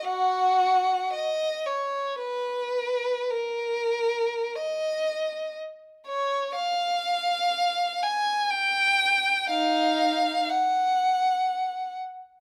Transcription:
\new Staff \with { instrumentName = "Violin" } { \time 3/4 \key fis \major \tempo 4 = 60 <fis' fis''>4 dis''8 cis''8 b'4 | ais'4 dis''4 r8 cis''8 | eis''4. gis''8 g''4 | <dis' eis''>4 fis''4. r8 | }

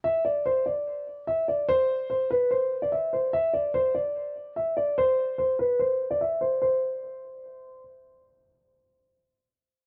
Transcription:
\new Staff \with { instrumentName = "Grand piano" } { \time 4/4 \key c \major \tempo 4 = 146 e''8 d''8 c''8 d''4. e''8 d''8 | c''4 c''8 b'8 c''8. d''16 e''8 c''8 | e''8 d''8 c''8 d''4. e''8 d''8 | c''4 c''8 b'8 c''8. d''16 e''8 c''8 |
c''2. r4 | r1 | }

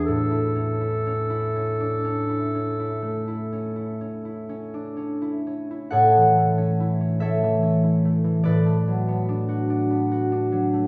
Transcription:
<<
  \new Staff \with { instrumentName = "Clarinet" } { \time 12/8 \key a \major \tempo 4. = 45 a'1~ a'4. r8 | r1. | }
  \new Staff \with { instrumentName = "Harp" } { \time 12/8 \key a \major << { r1. | <a' cis'' fis''>4. <a' cis'' e''>4. <a' b' d''>2. | } \\ { <a, e'>16 e'16 cis'16 e'16 cis'16 e'16 cis'16 d'16 cis'16 e'16 cis'16 e'16 a16 e'16 cis'16 e'16 cis'16 e'16 cis'16 d'16 cis'16 e'16 cis'16 e'16 | a,16 e16 a16 cis'16 e'16 cis'16 a16 e16 cis'16 e'16 a16 e16 a,16 a16 fis16 b16 d'16 fis'16 d'16 b16 fis'16 d'16 fis16 a16 | } >> }
>>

